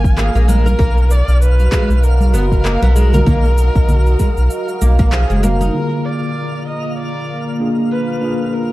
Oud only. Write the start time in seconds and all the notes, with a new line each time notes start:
0.17 A#3
0.35 A#3
0.48 G#3
0.66 A#4
0.79 A#3
1.72 G#3
2.34 B3
2.64 A#3
2.82 B3
2.96 G#3
3.14 A#4
3.26 A#3
4.19 G#3
4.81 A#3
4.99 A#3
5.12 F3
5.30 G#3
5.43 A#3
5.61 D#4